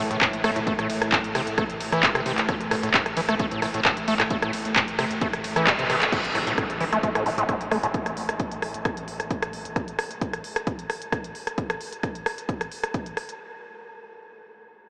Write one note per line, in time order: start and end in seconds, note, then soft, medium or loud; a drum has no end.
0.00 6.17 A2 medium
0.11 0.21 A1 medium
0.11 0.17 A2 loud
0.11 closed hi-hat medium
0.21 0.28 A2 loud
0.21 kick loud
0.21 cross-stick medium
0.21 clap loud
0.21 closed hi-hat medium
0.21 ride medium
0.33 0.44 A1 medium
0.33 closed hi-hat medium
0.44 0.55 A1 medium
0.44 0.51 A3 medium
0.44 cross-stick loud
0.44 open hi-hat medium
0.44 ride medium
0.56 0.67 A1 medium
0.56 0.60 A2 loud
0.56 closed hi-hat medium
0.67 0.74 A3 medium
0.67 kick loud
0.67 closed hi-hat medium
0.67 ride medium
0.79 0.89 A1 medium
0.79 0.88 A2 medium
0.79 cross-stick medium
0.79 closed hi-hat medium
0.89 1.01 A1 loud
0.89 open hi-hat loud
0.89 ride medium
1.01 1.12 A1 medium
1.01 cross-stick medium
1.01 closed hi-hat medium
1.12 1.19 A2 loud
1.12 kick loud
1.12 clap loud
1.12 closed hi-hat medium
1.12 ride medium
1.24 1.34 A1 medium
1.24 closed hi-hat medium
1.35 1.46 A1 loud
1.35 1.42 C3 medium
1.35 cross-stick medium
1.35 open hi-hat loud
1.35 ride medium
1.47 1.58 A1 medium
1.47 closed hi-hat medium
1.58 1.64 A3 medium
1.58 kick loud
1.58 cross-stick loud
1.58 closed hi-hat medium
1.58 ride medium
1.70 1.80 A1 medium
1.70 closed hi-hat medium
1.80 1.92 A1 medium
1.80 open hi-hat loud
1.80 ride medium
1.92 2.03 A1 medium
1.92 2.05 E3 loud
1.92 cross-stick medium
1.92 closed hi-hat medium
2.03 2.10 A2 loud
2.03 kick loud
2.03 clap loud
2.03 closed hi-hat medium
2.03 ride medium
2.15 2.25 A1 medium
2.15 2.21 C3 loud
2.15 cross-stick loud
2.15 closed hi-hat medium
2.26 2.37 A1 loud
2.26 2.33 C3 medium
2.26 open hi-hat medium
2.26 ride medium
2.38 2.48 A1 medium
2.38 clap medium
2.38 closed hi-hat medium
2.49 2.55 A2 medium
2.49 kick loud
2.49 cross-stick medium
2.49 closed hi-hat medium
2.49 ride medium
2.61 2.71 A1 medium
2.61 closed hi-hat medium
2.71 2.83 A1 loud
2.71 2.75 A2 medium
2.71 cross-stick medium
2.71 open hi-hat loud
2.71 ride medium
2.83 2.94 A1 medium
2.83 2.89 A2 loud
2.83 closed hi-hat medium
2.94 3.01 A2 loud
2.94 kick loud
2.94 clap loud
2.94 closed hi-hat medium
2.94 ride medium
3.06 3.16 A1 medium
3.06 cross-stick medium
3.06 closed hi-hat medium
3.17 3.28 A1 medium
3.17 3.21 E3 loud
3.17 open hi-hat medium
3.17 ride medium
3.29 3.39 A1 medium
3.29 3.35 A3 medium
3.29 cross-stick loud
3.29 closed hi-hat medium
3.39 3.46 A3 medium
3.39 kick loud
3.39 closed hi-hat medium
3.39 ride medium
3.51 3.62 A1 medium
3.51 3.61 A2 medium
3.51 closed hi-hat medium
3.62 3.74 A1 loud
3.62 3.66 A2 medium
3.62 cross-stick medium
3.62 open hi-hat loud
3.62 ride medium
3.74 3.85 A1 medium
3.74 3.80 A2 loud
3.74 closed hi-hat medium
3.85 3.92 A2 loud
3.85 kick loud
3.85 cross-stick medium
3.85 clap loud
3.85 closed hi-hat medium
3.85 ride medium
3.97 4.07 A1 medium
3.97 closed hi-hat medium
4.08 4.19 A1 loud
4.08 4.14 A3 medium
4.08 open hi-hat medium
4.08 ride medium
4.20 4.30 A1 medium
4.20 4.23 A2 loud
4.20 cross-stick medium
4.20 clap medium
4.20 closed hi-hat medium
4.30 4.37 A3 medium
4.30 kick loud
4.30 closed hi-hat medium
4.30 ride medium
4.42 4.53 A1 medium
4.42 4.51 A2 medium
4.42 cross-stick medium
4.42 closed hi-hat medium
4.53 4.65 A1 medium
4.53 open hi-hat loud
4.53 ride medium
4.65 4.76 A1 medium
4.65 closed hi-hat medium
4.76 4.83 A2 loud
4.76 kick loud
4.76 cross-stick medium
4.76 clap loud
4.76 closed hi-hat medium
4.76 ride medium
4.88 4.98 A1 medium
4.88 closed hi-hat medium
4.99 5.10 A1 loud
4.99 5.05 C3 medium
4.99 cross-stick medium
4.99 open hi-hat medium
4.99 ride medium
5.11 5.21 A1 medium
5.11 closed hi-hat medium
5.21 5.28 A3 medium
5.21 kick loud
5.21 closed hi-hat medium
5.21 ride medium
5.33 5.44 A1 medium
5.33 cross-stick medium
5.33 closed hi-hat medium
5.44 5.56 A1 loud
5.44 open hi-hat loud
5.44 ride medium
5.56 5.67 A1 medium
5.56 5.69 E3 loud
5.56 cross-stick medium
5.56 closed hi-hat medium
5.67 5.74 A2 loud
5.67 kick loud
5.67 clap loud
5.67 closed hi-hat medium
5.67 ride medium
5.79 5.89 A1 medium
5.79 5.85 C3 loud
5.79 closed hi-hat medium
5.90 6.01 A1 loud
5.90 5.96 C3 medium
5.90 cross-stick medium
5.90 open hi-hat medium
5.90 ride medium
6.02 6.12 A1 medium
6.02 clap medium
6.02 closed hi-hat medium
6.12 6.19 A2 medium
6.12 kick loud
6.12 closed hi-hat medium
6.12 crash medium
6.12 impact medium
6.24 6.34 A1 medium
6.24 closed hi-hat medium
6.35 6.46 A1 loud
6.35 6.39 A2 medium
6.35 cross-stick medium
6.35 open hi-hat loud
6.47 6.58 A1 medium
6.47 6.53 A2 loud
6.47 closed hi-hat medium
6.58 6.64 A2 medium
6.58 kick loud
6.58 cross-stick medium
6.58 closed hi-hat medium
6.70 6.80 A1 medium
6.70 closed hi-hat medium
6.80 6.92 A1 loud
6.80 6.85 E3 loud
6.80 open hi-hat medium
6.92 7.03 A1 medium
6.92 6.98 A3 medium
6.92 cross-stick medium
6.92 closed hi-hat medium
7.03 7.10 A3 medium
7.03 kick loud
7.03 closed hi-hat medium
7.15 7.25 A1 medium
7.15 7.24 A2 medium
7.15 cross-stick medium
7.15 closed hi-hat medium
7.26 7.37 A1 loud
7.26 7.30 A2 medium
7.26 open hi-hat loud
7.38 7.48 A1 medium
7.38 7.44 A2 loud
7.38 closed hi-hat medium
7.49 7.55 A2 loud
7.49 kick loud
7.49 cross-stick medium
7.49 closed hi-hat medium
7.61 7.71 A1 medium
7.61 closed hi-hat medium
7.71 7.83 A1 loud
7.71 7.78 A3 medium
7.71 cross-stick medium
7.71 open hi-hat medium
7.83 7.94 A1 medium
7.83 7.87 A2 loud
7.83 closed hi-hat medium
7.94 kick loud
7.94 closed hi-hat medium
8.06 8.16 A1 medium
8.06 cross-stick medium
8.06 closed hi-hat medium
8.17 8.28 A1 loud
8.17 open hi-hat loud
8.29 8.39 A1 medium
8.29 cross-stick medium
8.29 closed hi-hat medium
8.40 kick loud
8.40 closed hi-hat medium
8.52 8.62 A1 medium
8.52 closed hi-hat medium
8.62 8.74 A1 loud
8.62 cross-stick medium
8.62 open hi-hat loud
8.74 8.85 A1 medium
8.74 closed hi-hat medium
8.85 kick loud
8.85 cross-stick medium
8.85 closed hi-hat medium
8.97 9.07 A1 medium
8.97 closed hi-hat medium
9.08 9.19 A1 loud
9.08 open hi-hat loud
9.20 9.30 A1 medium
9.20 cross-stick medium
9.20 closed hi-hat medium
9.31 kick loud
9.31 closed hi-hat medium
9.42 9.53 A1 medium
9.42 cross-stick medium
9.42 closed hi-hat medium
9.53 9.65 A1 loud
9.53 open hi-hat medium
9.65 9.76 A1 medium
9.65 closed hi-hat medium
9.76 kick loud
9.76 cross-stick medium
9.76 closed hi-hat medium
9.88 closed hi-hat medium
9.99 cross-stick medium
9.99 open hi-hat loud
10.11 closed hi-hat medium
10.21 kick loud
10.21 closed hi-hat medium
10.33 cross-stick medium
10.33 closed hi-hat medium
10.44 open hi-hat loud
10.56 cross-stick medium
10.56 closed hi-hat medium
10.67 kick loud
10.67 closed hi-hat medium
10.79 closed hi-hat medium
10.90 cross-stick medium
10.90 open hi-hat loud
11.02 closed hi-hat medium
11.12 kick loud
11.12 cross-stick medium
11.12 closed hi-hat medium
11.24 closed hi-hat medium
11.35 open hi-hat medium
11.47 cross-stick medium
11.47 closed hi-hat medium
11.58 kick loud
11.58 closed hi-hat medium
11.70 cross-stick medium
11.70 closed hi-hat medium
11.81 open hi-hat loud
11.93 closed hi-hat medium
12.03 kick loud
12.03 cross-stick medium
12.03 closed hi-hat medium
12.15 closed hi-hat medium
12.26 cross-stick medium
12.26 open hi-hat loud
12.38 closed hi-hat medium
12.49 kick loud
12.49 closed hi-hat medium
12.61 cross-stick medium
12.61 closed hi-hat medium
12.72 open hi-hat loud
12.84 cross-stick medium
12.84 closed hi-hat medium
12.94 kick loud
12.94 closed hi-hat medium
13.06 closed hi-hat medium
13.17 cross-stick medium
13.17 open hi-hat medium
13.29 closed hi-hat medium